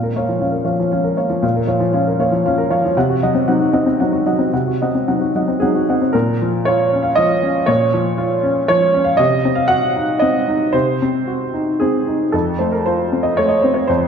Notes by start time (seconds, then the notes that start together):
Already playing: A#2 F5
0.03 A#4
0.16 A#3 C#5 F5
0.29 F3
0.41 F3 C#4 F5
0.52 A#4
0.65 F3 C#5 F5
0.80 F3
0.92 F3 C#4 F5
1.04 A#4
1.17 A#3 C#5 F5
1.30 F3
1.42 A#2 F5
1.56 A#4
1.67 F3 C#5 F5
1.80 F3
1.93 F3 C#4 F5
2.07 A#4
2.19 A#3 C#5 F5
2.32 F3
2.46 F3 C#4 F5
2.58 A#4
2.70 F3 C#5 F5
2.85 F3
2.97 C3 F#5
3.10 F#4
3.23 F#3 D#5 F#5
3.35 C4
3.48 F#3 C4 D#4 F#5
3.61 F#4
3.73 C4 D#5 F#5
3.86 C4
4.00 F#3 C4 D#4 F#5
4.12 F#4
4.26 F#3 D#5 F#5
4.39 C4
4.53 C3 F#5
4.67 F#4
4.82 C4 D#5 F#5
4.95 C4
5.08 F#3 C4 D#4 F#5
5.21 F#4
5.35 F#3 D#5 F#5
5.48 C4
5.60 F#3 C4 D#4 G#4 F#5
5.75 F#4
5.89 C4 D#5 F#5
6.01 C4
6.13 A#2 A#4
6.42 F3
6.65 F4 C#5
6.93 C#4
7.03 F5
7.15 F3 D#5
7.43 C#4
7.66 A#2 C#5
7.94 F3
8.18 F4
8.43 C#4
8.68 F3 C#5
8.94 C#4
9.05 F5
9.17 C3 D#5
9.45 C4
9.55 F5
9.68 F#4 F#5
9.96 D#4
10.19 C4 D#5
10.48 D#4
10.73 C3 C5
11.02 C4
11.27 F#4
11.54 D#4
11.80 C4 G#4
12.07 D#4
12.32 F2 A4
12.59 A3 C5
12.72 A#4
12.86 F4 C5
13.12 C4
13.23 D#5
13.37 A3 C#5
13.48 D#5
13.62 C4 C5
13.74 C#5
13.87 F2 C5